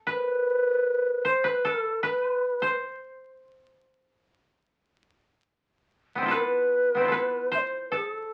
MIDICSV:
0, 0, Header, 1, 3, 480
1, 0, Start_track
1, 0, Tempo, 782269
1, 47, Time_signature, 4, 2, 24, 8
1, 3887, Tempo, 813008
1, 5068, End_track
2, 0, Start_track
2, 0, Title_t, "Shakuhachi"
2, 0, Program_c, 0, 77
2, 58, Note_on_c, 0, 71, 86
2, 785, Note_on_c, 0, 72, 81
2, 794, Note_off_c, 0, 71, 0
2, 904, Note_on_c, 0, 71, 80
2, 913, Note_off_c, 0, 72, 0
2, 1018, Note_on_c, 0, 69, 72
2, 1027, Note_off_c, 0, 71, 0
2, 1252, Note_off_c, 0, 69, 0
2, 1255, Note_on_c, 0, 71, 71
2, 1709, Note_off_c, 0, 71, 0
2, 3882, Note_on_c, 0, 71, 97
2, 4576, Note_off_c, 0, 71, 0
2, 4602, Note_on_c, 0, 76, 66
2, 4626, Note_on_c, 0, 72, 71
2, 4632, Note_off_c, 0, 76, 0
2, 4786, Note_off_c, 0, 72, 0
2, 4810, Note_on_c, 0, 71, 50
2, 4852, Note_on_c, 0, 68, 64
2, 4860, Note_off_c, 0, 71, 0
2, 4946, Note_off_c, 0, 68, 0
2, 4946, Note_on_c, 0, 69, 64
2, 5068, Note_off_c, 0, 69, 0
2, 5068, End_track
3, 0, Start_track
3, 0, Title_t, "Koto"
3, 0, Program_c, 1, 107
3, 0, Note_on_c, 1, 69, 50
3, 41, Note_on_c, 1, 71, 64
3, 765, Note_on_c, 1, 72, 68
3, 802, Note_off_c, 1, 71, 0
3, 850, Note_off_c, 1, 69, 0
3, 884, Note_on_c, 1, 71, 67
3, 921, Note_off_c, 1, 72, 0
3, 1011, Note_on_c, 1, 69, 68
3, 1243, Note_off_c, 1, 71, 0
3, 1245, Note_on_c, 1, 71, 75
3, 1607, Note_on_c, 1, 72, 64
3, 1644, Note_off_c, 1, 71, 0
3, 2178, Note_off_c, 1, 69, 0
3, 2660, Note_off_c, 1, 72, 0
3, 3776, Note_on_c, 1, 59, 34
3, 3790, Note_on_c, 1, 60, 37
3, 3819, Note_on_c, 1, 64, 40
3, 3840, Note_on_c, 1, 65, 42
3, 3854, Note_on_c, 1, 69, 52
3, 3872, Note_on_c, 1, 71, 69
3, 3908, Note_off_c, 1, 60, 0
3, 4246, Note_off_c, 1, 59, 0
3, 4248, Note_on_c, 1, 59, 28
3, 4260, Note_on_c, 1, 60, 33
3, 4287, Note_off_c, 1, 64, 0
3, 4289, Note_on_c, 1, 64, 37
3, 4305, Note_off_c, 1, 65, 0
3, 4307, Note_on_c, 1, 65, 39
3, 4325, Note_off_c, 1, 69, 0
3, 4327, Note_on_c, 1, 69, 43
3, 4347, Note_off_c, 1, 71, 0
3, 4349, Note_on_c, 1, 71, 67
3, 4385, Note_off_c, 1, 60, 0
3, 4584, Note_on_c, 1, 72, 68
3, 4620, Note_off_c, 1, 59, 0
3, 4620, Note_off_c, 1, 71, 0
3, 4818, Note_off_c, 1, 69, 0
3, 4821, Note_on_c, 1, 69, 55
3, 5068, Note_off_c, 1, 64, 0
3, 5068, Note_off_c, 1, 65, 0
3, 5068, Note_off_c, 1, 69, 0
3, 5068, Note_off_c, 1, 72, 0
3, 5068, End_track
0, 0, End_of_file